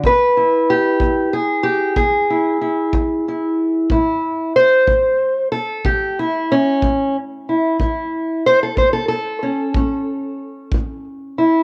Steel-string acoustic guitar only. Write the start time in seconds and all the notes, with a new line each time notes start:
0.05 E2 B4
0.37 E4
0.70 G4
1.01 E2
1.33 G#4
1.63 G4
1.96 E2 G#4
2.30 E4
2.61 E4
2.94 E2
3.28 E4
3.91 A2 E4
4.56 C5
4.88 A2
5.52 A4
5.85 A2 G4
6.19 E4
6.52 C#4
6.83 A2
7.49 E4
7.80 A2 E4
8.46 C5
8.63 A4
8.77 A2 C5
8.93 A4
9.08 A4
9.43 C#4
9.76 A2 C#4
10.74 A2
11.38 E4